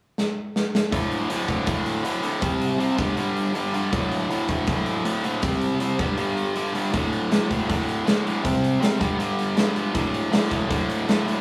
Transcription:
0.18 snare medium
0.56 snare medium
0.75 snare medium
0.92 1.28 D2 medium
0.92 1.29 A2 medium
0.92 1.29 D3 medium
0.92 kick loud
0.92 open hi-hat medium
1.11 open hi-hat soft
1.29 1.47 D2 medium
1.29 1.48 A2 medium
1.29 1.48 D3 medium
1.29 open hi-hat medium
1.48 1.66 D2 medium
1.48 1.66 A2 medium
1.48 1.67 D3 medium
1.48 kick medium
1.48 open hi-hat soft
1.67 2.03 D2 medium
1.67 2.04 A2 medium
1.67 2.04 D3 loud
1.67 kick loud
1.67 open hi-hat medium
1.86 open hi-hat medium
2.04 2.21 D2 medium
2.04 2.21 A2 medium
2.04 2.22 D3 medium
2.04 open hi-hat medium
2.22 2.41 D2 medium
2.22 2.41 A2 medium
2.22 2.41 D3 medium
2.22 open hi-hat medium
2.41 2.77 C3 medium
2.41 2.78 G3 medium
2.41 2.78 C4 medium
2.41 kick loud
2.41 open hi-hat medium
2.62 open hi-hat soft
2.78 2.97 C3 medium
2.78 2.98 G3 medium
2.78 2.98 C4 medium
2.78 open hi-hat medium
2.98 3.16 G2 medium
2.98 3.17 D3 medium
2.98 3.17 G3 medium
2.98 kick loud
2.98 open hi-hat soft
3.17 3.53 G2 medium
3.17 3.54 D3 medium
3.17 3.54 G3 loud
3.17 open hi-hat medium
3.37 open hi-hat soft
3.55 3.72 G2 medium
3.55 3.73 D3 medium
3.55 3.73 G3 medium
3.55 open hi-hat medium
3.73 3.92 G2 medium
3.73 3.92 D3 medium
3.73 3.92 G3 medium
3.73 open hi-hat soft
3.92 4.28 D2 medium
3.92 4.28 A2 medium
3.92 4.28 D3 medium
3.92 kick loud
3.92 open hi-hat medium
4.12 open hi-hat soft
4.29 4.47 D2 medium
4.29 4.48 A2 medium
4.29 4.48 D3 medium
4.29 open hi-hat medium
4.48 4.66 D2 medium
4.48 4.66 A2 medium
4.48 4.67 D3 loud
4.48 kick medium
4.48 open hi-hat medium
4.67 5.04 D2 loud
4.67 5.04 A2 loud
4.67 5.04 D3 loud
4.67 kick loud
4.67 open hi-hat medium
4.86 open hi-hat soft
5.05 5.22 D2 medium
5.05 5.23 A2 medium
5.05 5.24 D3 medium
5.05 open hi-hat medium
5.24 5.42 D2 medium
5.24 5.42 A2 medium
5.24 5.42 D3 medium
5.24 open hi-hat soft
5.42 5.79 C3 medium
5.42 5.79 G3 medium
5.42 5.80 C4 medium
5.42 kick loud
5.42 open hi-hat medium
5.61 open hi-hat soft
5.80 5.98 C3 medium
5.80 5.98 G3 medium
5.80 5.99 C4 medium
5.80 open hi-hat medium
5.99 6.16 G2 medium
5.99 6.17 D3 medium
5.99 6.17 G3 medium
5.99 kick loud
5.99 open hi-hat soft
6.17 6.54 G2 medium
6.17 6.54 D3 medium
6.17 6.55 G3 loud
6.17 open hi-hat medium
6.37 open hi-hat soft
6.55 6.73 G2 medium
6.55 6.74 D3 medium
6.55 6.74 G3 medium
6.55 open hi-hat medium
6.74 6.92 G2 medium
6.74 6.92 D3 medium
6.74 6.93 G3 medium
6.74 open hi-hat soft
6.93 7.30 D2 medium
6.93 7.30 A2 medium
6.93 7.31 D3 medium
6.93 kick medium
6.93 open hi-hat medium
7.13 open hi-hat soft
7.31 7.49 D2 medium
7.31 7.50 A2 medium
7.31 7.50 D3 medium
7.31 snare loud
7.31 open hi-hat medium
7.50 7.67 D2 medium
7.50 7.68 A2 medium
7.50 7.68 D3 medium
7.50 kick medium
7.50 open hi-hat soft
7.68 8.04 D2 medium
7.68 8.04 A2 medium
7.68 8.05 D3 loud
7.68 kick loud
7.68 open hi-hat medium
7.89 open hi-hat soft
8.05 8.24 D2 medium
8.05 8.25 A2 medium
8.05 8.25 D3 medium
8.05 snare loud
8.05 open hi-hat medium
8.25 8.43 D2 medium
8.25 8.43 A2 medium
8.25 8.44 D3 medium
8.25 open hi-hat soft
8.43 8.79 C3 medium
8.43 8.79 G3 medium
8.43 8.80 C4 medium
8.43 kick loud
8.43 open hi-hat medium
8.64 open hi-hat medium
8.80 8.99 C3 medium
8.80 8.99 G3 medium
8.80 8.99 C4 medium
8.80 snare loud
8.80 open hi-hat medium
9.00 9.17 G2 medium
9.00 9.17 D3 medium
9.00 9.18 G3 loud
9.00 kick loud
9.00 open hi-hat soft
9.18 9.55 G2 medium
9.18 9.56 D3 loud
9.18 9.56 G3 loud
9.18 open hi-hat medium
9.39 open hi-hat soft
9.56 9.74 G2 medium
9.56 9.74 D3 medium
9.56 9.75 G3 medium
9.56 snare medium
9.56 open hi-hat medium
9.75 9.93 G2 medium
9.75 9.93 D3 medium
9.75 9.94 G3 medium
9.75 open hi-hat soft
9.93 10.30 D2 medium
9.93 10.30 A2 medium
9.93 10.31 D3 loud
9.93 kick loud
9.93 open hi-hat medium
10.14 open hi-hat soft
10.31 10.49 D2 medium
10.31 10.50 A2 medium
10.31 10.50 D3 medium
10.31 snare loud
10.31 open hi-hat medium
10.50 10.68 D2 medium
10.50 10.68 A2 medium
10.50 10.69 D3 medium
10.50 kick medium
10.50 open hi-hat soft
10.69 11.06 D2 medium
10.69 11.07 A2 medium
10.69 11.07 D3 loud
10.69 kick loud
10.69 open hi-hat medium
10.90 open hi-hat soft
11.07 11.24 D2 medium
11.07 11.25 A2 medium
11.07 11.25 D3 medium
11.07 snare medium
11.07 open hi-hat medium
11.25 11.41 D2 medium
11.25 11.41 A2 medium
11.25 11.41 D3 medium
11.25 open hi-hat medium

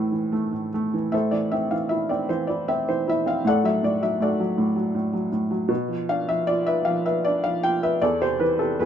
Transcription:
0.00 0.53 A2 medium
0.00 0.12 E3 soft
0.00 0.32 A3 medium
0.00 0.70 C4 medium
0.00 0.69 A4 medium
0.12 0.92 E3 soft
0.32 0.73 A3 soft
0.53 1.11 A2 soft
0.74 1.12 A3 medium
0.94 1.13 E3 soft
1.12 3.41 A2 medium
1.12 2.27 A4 medium
1.12 2.26 C5 soft
1.12 1.31 E5 medium
1.31 1.70 E3 soft
1.31 1.52 D5 medium
1.52 2.09 C4 soft
1.52 1.72 E5 medium
1.71 2.28 E3 soft
1.71 1.89 F5 medium
1.89 2.48 E4 soft
1.89 2.08 E5 medium
2.09 2.67 C4 soft
2.09 2.30 D5 medium
2.29 2.87 E3 medium
2.29 2.48 C5 medium
2.47 3.06 E4 soft
2.47 2.68 D5 medium
2.68 3.25 C4 soft
2.68 2.89 E5 medium
2.89 3.44 E3 soft
2.89 3.08 C5 medium
3.08 3.44 E4 soft
3.08 3.28 E5 medium
3.26 3.45 C4 soft
3.26 3.45 F5 medium
3.45 3.82 A2 medium
3.45 4.21 A4 medium
3.45 3.83 D5 medium
3.45 3.64 F#5 medium
3.64 4.00 F#3 soft
3.64 3.82 E5 medium
3.83 4.19 A2 soft
3.83 4.01 D5 medium
4.02 4.38 F#3 soft
4.02 4.21 E5 medium
4.20 4.56 A2 soft
4.20 5.29 F#4 soft
4.20 5.29 A4 soft
4.20 5.29 D5 medium
4.40 4.75 F#3 soft
4.58 4.93 A2 medium
4.76 5.12 F#3 soft
4.95 5.31 A2 soft
5.13 5.49 F#3 soft
5.32 5.69 A2 soft
5.51 5.69 F#3 soft
5.68 7.97 B2 medium
5.88 6.27 F3 soft
6.09 7.24 D4 soft
6.09 6.29 F5 medium
6.28 6.85 F3 soft
6.28 6.48 E5 medium
6.47 7.62 F4 soft
6.47 6.67 D5 medium
6.67 7.04 B4 soft
6.67 6.84 E5 medium
6.85 7.44 F3 medium
6.85 7.05 F5 medium
7.06 7.81 B4 soft
7.06 7.25 E5 medium
7.25 8.00 D4 medium
7.25 7.42 D5 medium
7.44 8.01 F3 soft
7.44 7.63 F5 medium
7.63 8.01 F4 medium
7.63 7.83 G5 medium
7.83 8.01 B4 soft
7.83 8.03 E5 medium
8.02 8.77 E2 medium
8.02 8.58 A4 medium
8.02 8.21 D5 medium
8.22 8.59 C3 soft
8.22 8.41 C5 medium
8.40 8.78 E3 soft
8.40 8.60 B4 medium
8.59 8.79 C3 soft
8.59 8.79 A4 medium
8.80 8.85 E2 medium
8.80 8.85 E4 soft
8.80 8.85 G#4 soft
8.80 8.85 B4 medium

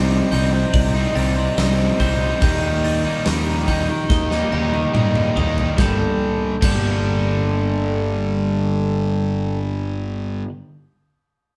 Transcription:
0.00 0.21 C2 loud
0.00 0.31 C3 loud
0.00 1.15 C3 medium
0.00 0.33 G3 loud
0.00 2.13 G3 medium
0.00 0.33 C4 loud
0.00 0.30 D#4 medium
0.00 0.35 D#4 loud
0.00 2.38 D#4 medium
0.00 1.15 G4 medium
0.00 2.38 D5 medium
0.00 2.39 C6 medium
0.00 0.32 A6 medium
0.31 0.63 C2 loud
0.31 0.95 C3 medium
0.31 0.55 G3 medium
0.31 0.53 C4 medium
0.31 1.57 D#4 medium
0.31 0.51 D#4 medium
0.31 1.15 G6 medium
0.31 open hi-hat medium
0.53 0.97 G3 medium
0.53 0.95 C4 medium
0.53 0.93 D#4 medium
0.53 muted overdriven electric guitar stroke medium
0.73 1.05 C2 loud
0.73 2.41 D5 medium
0.73 kick loud
0.73 open hi-hat loud
0.94 1.15 G3 medium
0.94 1.15 C4 medium
0.94 1.16 D#4 medium
0.94 snare soft
1.15 1.47 C2 medium
1.15 1.56 C3 medium
1.15 1.38 G3 medium
1.15 1.36 C4 medium
1.15 1.34 D#4 medium
1.15 3.26 G4 medium
1.15 1.99 A6 medium
1.15 open hi-hat medium
1.36 1.58 G3 medium
1.36 1.57 C4 medium
1.36 1.58 D#4 medium
1.36 muted overdriven electric guitar stroke medium
1.57 1.88 C2 loud
1.57 1.97 C3 loud
1.57 1.99 G3 medium
1.57 2.00 C4 medium
1.57 2.42 D#4 medium
1.57 2.00 D#4 loud
1.57 snare loud
1.57 open hi-hat loud
1.99 2.31 C2 loud
1.99 2.39 C3 medium
1.99 2.22 G3 loud
1.99 2.42 C4 medium
1.99 2.20 C4 medium
1.99 2.19 D#4 medium
1.99 2.40 G6 medium
1.99 kick medium
1.99 snare soft
1.99 open hi-hat medium
2.20 2.42 G3 medium
2.20 2.39 C4 medium
2.20 2.39 D#4 medium
2.41 3.04 D#2 loud
2.41 3.05 D#3 loud
2.41 4.52 D#3 medium
2.41 2.63 G3 loud
2.41 2.62 A#3 loud
2.41 2.61 D#4 loud
2.41 5.75 G4 medium
2.41 5.75 D#5 medium
2.41 5.75 A#5 medium
2.41 2.83 G6 medium
2.41 kick loud
2.41 open hi-hat loud
2.62 3.05 G3 medium
2.62 3.04 A#3 medium
2.62 3.03 D#4 medium
2.84 3.67 D#4 medium
2.84 3.68 A6 medium
2.84 open hi-hat medium
3.04 3.25 G3 medium
3.04 3.26 A#3 medium
3.04 3.26 D#4 medium
3.25 3.88 D#2 loud
3.25 3.66 D#3 loud
3.25 3.67 G3 loud
3.25 3.68 A#3 loud
3.25 3.68 D#4 loud
3.25 4.51 G4 medium
3.25 snare loud
3.25 open hi-hat medium
3.67 4.30 D#3 medium
3.67 3.89 G3 medium
3.67 3.88 A#3 medium
3.67 4.93 D#4 medium
3.67 3.87 D#4 medium
3.67 4.52 G6 medium
3.67 kick medium
3.67 open hi-hat medium
3.88 4.32 G3 medium
3.88 4.30 A#3 medium
3.88 4.29 D#4 medium
3.88 muted overdriven electric guitar stroke medium
4.09 4.41 D#2 loud
4.09 5.78 D#5 medium
4.09 kick loud
4.09 snare medium
4.30 4.52 G3 medium
4.30 4.52 A#3 medium
4.30 4.53 D#4 medium
4.30 snare medium
4.52 4.84 D#2 medium
4.52 4.93 D#3 medium
4.52 4.74 G3 medium
4.52 4.73 A#3 medium
4.52 4.71 D#4 medium
4.52 5.78 G4 medium
4.52 5.36 A#6 medium
4.52 high tom medium
4.72 4.93 G3 medium
4.72 4.94 A#3 medium
4.72 4.95 D#4 medium
4.72 muted overdriven electric guitar stroke medium
4.72 high tom medium
4.94 5.25 G2 medium
4.94 5.35 D#3 medium
4.94 5.35 G3 medium
4.94 5.36 A#3 loud
4.94 5.78 D#4 medium
4.94 5.37 D#4 loud
4.94 mid tom loud
5.15 mid tom medium
5.36 5.67 D#2 medium
5.36 5.75 D#3 medium
5.36 5.58 G3 medium
5.36 5.77 A#3 medium
5.36 5.57 A#3 medium
5.36 5.56 D#4 medium
5.36 5.78 D#6 medium
5.36 floor tom loud
5.57 5.77 G3 medium
5.57 5.76 A#3 medium
5.57 5.75 D#4 medium
5.57 floor tom loud
5.77 6.02 G1 loud
5.77 6.55 G2 medium
5.77 6.55 D3 loud
5.77 6.55 G3 medium
5.77 6.55 A#3 loud
5.77 6.55 D4 loud
5.77 9.58 A4 medium
5.77 6.55 A4 loud
5.77 9.58 G5 medium
5.77 6.03 G6 medium
5.77 kick loud
5.77 snare medium
5.81 6.55 G3 loud
6.61 10.42 G1 loud
6.61 10.45 G2 loud
6.61 10.48 D3 loud
6.61 10.45 G3 medium
6.61 10.47 A#3 loud
6.61 10.48 D4 loud
6.61 10.49 A4 loud
6.61 6.88 G6 medium
6.61 kick loud
6.61 crash medium
6.65 10.49 G3 loud

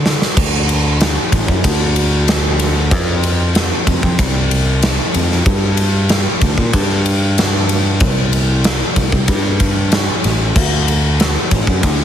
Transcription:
0.00 0.15 D3 loud
0.06 snare medium
0.22 snare medium
0.37 1.16 D2 medium
0.37 kick loud
0.37 crash loud
0.69 ride medium
1.00 snare loud
1.00 ride loud
1.32 1.46 A1 loud
1.32 kick medium
1.32 ride medium
1.48 1.62 F#2 medium
1.48 kick medium
1.64 2.92 D2 loud
1.64 kick loud
1.64 ride loud
1.96 ride medium
2.28 snare loud
2.28 ride loud
2.59 snare soft
2.59 ride medium
2.91 3.71 F2 loud
2.91 kick loud
2.91 ride loud
3.23 ride medium
3.55 snare loud
3.55 ride loud
3.87 4.00 F2 medium
3.87 kick medium
3.87 ride medium
4.03 4.16 F2 loud
4.03 kick medium
4.19 4.98 C2 loud
4.19 kick loud
4.19 ride loud
4.51 ride medium
4.82 snare loud
4.82 ride loud
5.14 5.41 F2 medium
5.14 ride medium
5.32 snare soft
5.46 6.25 G2 loud
5.46 kick loud
5.46 ride loud
5.77 ride medium
6.09 snare loud
6.09 ride loud
6.41 6.55 D2 medium
6.41 kick medium
6.41 ride medium
6.58 6.71 A#2 medium
6.58 kick medium
6.73 8.03 G2 loud
6.73 kick loud
6.73 ride loud
7.06 ride medium
7.38 snare loud
7.38 ride loud
7.69 ride medium
8.00 8.80 C2 medium
8.00 kick loud
8.00 ride loud
8.33 ride medium
8.64 snare loud
8.64 ride loud
8.96 9.10 C2 medium
8.96 kick medium
8.96 ride medium
9.12 9.26 C2 medium
9.12 kick medium
9.28 10.08 G2 loud
9.28 kick loud
9.28 ride loud
9.60 kick medium
9.60 ride medium
9.92 snare loud
9.92 ride loud
10.24 10.51 A1 medium
10.24 snare soft
10.24 ride medium
10.56 11.35 D2 loud
10.56 kick loud
10.56 crash loud
10.88 ride medium
11.20 snare loud
11.20 ride loud
11.51 11.65 A1 medium
11.51 kick medium
11.51 ride medium
11.67 11.81 F#2 medium
11.67 kick medium
11.83 12.04 D2 loud
11.83 kick loud
11.83 ride loud

